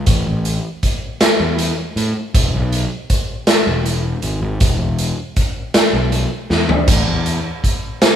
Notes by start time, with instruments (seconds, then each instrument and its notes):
0.06 picked electric bass A1, kick, closed hi-hat
0.27 picked electric bass A1
0.45 closed hi-hat
0.83 kick, closed hi-hat
1.20 snare, closed hi-hat
1.40 picked electric bass E2
1.58 closed hi-hat
1.96 picked electric bass A2, closed hi-hat
2.34 picked electric bass E1, kick, closed hi-hat
2.53 picked electric bass B1
2.72 closed hi-hat
3.10 kick, closed hi-hat
3.47 snare, closed hi-hat
3.67 picked electric bass E1
3.86 closed hi-hat
4.22 picked electric bass G#1, closed hi-hat
4.42 picked electric bass G#1
4.60 picked electric bass E1, kick, closed hi-hat
4.80 picked electric bass E1
4.98 closed hi-hat
5.36 kick, closed hi-hat
5.74 snare, closed hi-hat
5.93 picked electric bass B1
6.12 closed hi-hat
6.50 picked electric bass E2, snare
6.69 floor tom
6.87 picked electric bass A1, kick, closed hi-hat, crash
7.07 picked electric bass E2
7.26 closed hi-hat
7.64 kick, closed hi-hat
8.02 snare, closed hi-hat